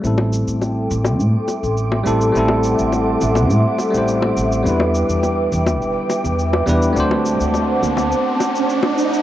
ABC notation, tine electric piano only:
X:1
M:4/4
L:1/16
Q:1/4=104
K:Ador
V:1 name="Tine electric piano"
[G,A,CEA]12- [G,A,CEA]2 [G,A,CEA]2 | [G,A,CEA]8- [G,A,CEA]3 [G,A,CEc]4- [G,A,CEc] | [G,B,DEB]12- [G,B,DEB]2 [G,B,DEB]2 | [A,CDFc]8- [A,CDFc]3 z4 z |]